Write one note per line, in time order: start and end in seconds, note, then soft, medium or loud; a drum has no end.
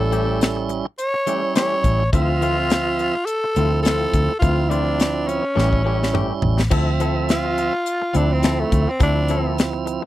0.00 0.81 A1 medium
0.00 0.86 G3 medium
0.00 0.86 C#4 medium
0.00 0.86 E4 medium
0.00 0.69 A4 medium
0.11 0.27 E3 medium
0.11 0.28 A3 medium
0.11 0.27 C#4 medium
0.11 0.25 G4 medium
0.11 closed hi-hat medium
0.27 0.40 A3 soft
0.27 0.40 C#4 soft
0.27 0.40 G4 medium
0.41 muted clean electric guitar stroke soft
0.41 snare loud
0.41 closed hi-hat medium
0.57 muted clean electric guitar stroke soft
0.69 muted clean electric guitar stroke soft
0.69 closed hi-hat medium
0.85 muted clean electric guitar stroke soft
0.98 1.52 C#5 loud
0.98 closed hi-hat medium
1.14 muted clean electric guitar stroke soft
1.27 1.42 E3 medium
1.27 2.04 G3 medium
1.27 1.43 A3 medium
1.27 2.04 C#4 medium
1.27 1.42 C#4 medium
1.27 2.04 E4 medium
1.27 1.41 G4 medium
1.27 closed hi-hat medium
1.43 muted clean electric guitar stroke soft
1.55 1.74 E3 medium
1.55 1.74 A3 medium
1.55 1.74 C#4 medium
1.55 1.74 G4 medium
1.55 2.09 C#5 loud
1.55 snare loud
1.55 closed hi-hat medium
1.84 2.09 A1 medium
1.84 muted clean electric guitar stroke soft
1.84 kick medium
1.84 closed hi-hat medium
2.00 muted clean electric guitar stroke soft
2.13 3.10 D2 medium
2.13 2.31 E3 medium
2.13 3.15 F3 medium
2.13 2.31 A3 medium
2.13 3.15 C4 medium
2.13 2.31 C4 medium
2.13 3.27 F4 loud
2.13 2.32 F4 medium
2.13 3.15 E5 medium
2.13 kick medium
2.13 closed hi-hat medium
2.42 2.57 E3 medium
2.42 2.58 A3 medium
2.42 2.58 C4 medium
2.42 2.57 F4 medium
2.42 closed hi-hat medium
2.58 2.70 A3 soft
2.58 2.71 C4 soft
2.58 2.71 F4 soft
2.70 muted clean electric guitar stroke soft
2.70 snare loud
2.70 closed hi-hat medium
2.87 muted clean electric guitar stroke soft
2.99 muted clean electric guitar stroke soft
2.99 closed hi-hat medium
3.15 muted clean electric guitar stroke soft
3.26 3.82 A4 loud
3.26 closed hi-hat medium
3.44 muted clean electric guitar stroke soft
3.56 4.05 D2 medium
3.56 3.72 E3 medium
3.56 4.33 F3 medium
3.56 3.72 A3 medium
3.56 4.33 C4 medium
3.56 3.72 C4 medium
3.56 4.33 E4 medium
3.56 3.71 F4 medium
3.56 closed hi-hat medium
3.83 4.03 E3 medium
3.83 4.04 A3 medium
3.83 4.04 C4 medium
3.83 4.04 F4 medium
3.83 4.37 A4 medium
3.83 snare loud
3.83 closed hi-hat medium
4.13 4.27 D2 loud
4.13 muted clean electric guitar stroke soft
4.13 kick medium
4.13 closed hi-hat medium
4.29 muted clean electric guitar stroke soft
4.40 5.39 D2 loud
4.40 4.60 E3 medium
4.40 5.44 F3 medium
4.40 4.60 A3 medium
4.40 5.45 C4 medium
4.40 4.61 C4 medium
4.40 5.45 E4 medium
4.40 4.71 F4 medium
4.40 4.61 F4 medium
4.40 kick medium
4.40 closed hi-hat medium
4.70 4.86 E3 medium
4.70 4.86 A3 medium
4.70 4.86 C4 medium
4.70 5.29 D4 medium
4.70 4.84 F4 medium
4.70 closed hi-hat medium
4.86 4.98 A3 soft
4.86 4.98 C4 soft
4.86 4.99 F4 soft
4.99 muted clean electric guitar stroke soft
4.99 snare loud
4.99 closed hi-hat medium
5.14 muted clean electric guitar stroke soft
5.28 6.43 C#4 medium
5.28 muted clean electric guitar stroke soft
5.28 closed hi-hat medium
5.42 muted clean electric guitar stroke soft
5.55 6.30 A1 medium
5.55 5.72 E3 medium
5.55 5.83 G3 medium
5.55 5.71 A3 medium
5.55 5.71 C#4 medium
5.55 5.83 C#4 medium
5.55 5.83 E4 medium
5.55 5.70 G4 medium
5.55 snare medium
5.71 muted clean electric guitar stroke soft
5.71 kick soft
5.84 6.00 E3 medium
5.84 6.63 G3 medium
5.84 6.00 A3 medium
5.84 5.99 C#4 medium
5.84 6.63 C#4 medium
5.84 6.63 E4 medium
5.84 5.99 G4 medium
6.00 muted clean electric guitar stroke soft
6.00 snare medium
6.13 6.32 E3 medium
6.13 6.32 A3 medium
6.13 6.32 C#4 medium
6.13 6.33 G4 medium
6.13 mid tom medium
6.42 6.67 A1 medium
6.42 muted clean electric guitar stroke soft
6.42 floor tom medium
6.58 muted clean electric guitar stroke soft
6.58 snare medium
6.71 7.68 D2 medium
6.71 7.73 F3 medium
6.71 6.89 F3 medium
6.71 7.73 C4 medium
6.71 6.89 C4 medium
6.71 6.90 E4 medium
6.71 6.90 A4 medium
6.71 7.73 E5 medium
6.71 kick loud
6.71 crash medium
7.00 7.16 F3 medium
7.00 7.16 C4 medium
7.00 7.15 E4 medium
7.00 7.14 A4 medium
7.00 closed hi-hat medium
7.15 7.28 C4 soft
7.15 7.29 E4 soft
7.15 7.29 A4 medium
7.29 8.18 F4 medium
7.29 muted clean electric guitar stroke soft
7.29 snare loud
7.29 closed hi-hat medium
7.45 muted clean electric guitar stroke soft
7.58 muted clean electric guitar stroke soft
7.58 closed hi-hat medium
7.73 muted clean electric guitar stroke soft
7.86 closed hi-hat medium
8.02 muted clean electric guitar stroke soft
8.13 8.63 D2 medium
8.13 8.91 F3 medium
8.13 8.30 F3 medium
8.13 8.91 C4 medium
8.13 8.30 C4 medium
8.13 8.34 D4 medium
8.13 8.91 E4 medium
8.13 8.29 E4 medium
8.13 8.29 A4 medium
8.13 closed hi-hat medium
8.30 8.62 C4 medium
8.30 muted clean electric guitar stroke soft
8.43 8.61 F3 medium
8.43 8.62 C4 medium
8.43 8.62 E4 medium
8.43 8.62 A4 medium
8.43 snare loud
8.43 closed hi-hat medium
8.61 8.91 A3 medium
8.72 8.85 D2 loud
8.72 muted clean electric guitar stroke soft
8.72 kick medium
8.72 closed hi-hat medium
8.87 9.01 C4 medium
8.87 muted clean electric guitar stroke soft
9.00 9.98 D2 medium
9.00 10.02 F3 medium
9.00 9.18 F3 medium
9.00 10.03 C4 medium
9.00 9.19 C4 medium
9.00 9.58 D4 medium
9.00 10.02 E4 medium
9.00 9.19 E4 medium
9.00 9.19 A4 medium
9.00 kick loud
9.00 closed hi-hat medium
9.28 9.45 F3 medium
9.28 9.45 C4 medium
9.28 9.45 E4 medium
9.28 9.43 A4 medium
9.28 closed hi-hat medium
9.44 9.57 C4 soft
9.44 9.57 E4 soft
9.44 9.57 A4 medium
9.57 muted clean electric guitar stroke soft
9.57 snare loud
9.57 closed hi-hat medium
9.73 muted clean electric guitar stroke soft
9.86 muted clean electric guitar stroke soft
9.86 closed hi-hat medium
10.02 muted clean electric guitar stroke soft